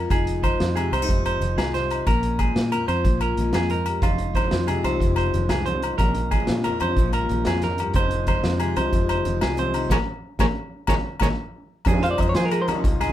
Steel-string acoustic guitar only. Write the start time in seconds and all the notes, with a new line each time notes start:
Already playing: F2 F3 G#3 F4
0.11 F2 D#4
0.45 F3 G#3
0.77 C3 F4
0.94 C4
1.02 D#4
1.10 F2 D#4
1.41 F3 G#3
1.74 C3 G#4
1.92 D#4
2.07 A#2 C#4
2.40 F3 G#3
2.74 F2 F4
2.89 C#4
3.05 A#2 C#4
3.39 F3 G#3
3.54 A#2
3.70 G#2
3.87 G2
4.04 F2 D#4
4.37 F3 G#3
4.68 C3 F4
4.87 D#4
5.02 F2 D#4
5.34 F3 G#3
5.51 F2
5.67 G2
5.84 G#2
5.99 A#2, muted steel-string acoustic guitar stroke
6.32 F3 G#3
6.65 F2 F4
6.83 C#4
6.98 A#2 C#4
7.31 F3
7.47 A#2
7.63 G#2
7.79 G2
7.95 F2 F3 G#3 D#4 G#4
8.27 F3 G#3
8.60 C3 F4
8.79 D#4
8.93 F2 D#4
9.25 F3 G#3
9.57 C3 G#4
9.76 D#4
9.91 F3 G#3 A#3
10.39 F3 G#3 A#3
10.90 F3 G#3 A#3
11.23 F3 G#3 A#3
11.87 F2 F3 G#3 D#4 G#4
12.06 D#4
12.22 G#4
12.37 F3
12.69 D#4
12.85 F2
13.04 D#4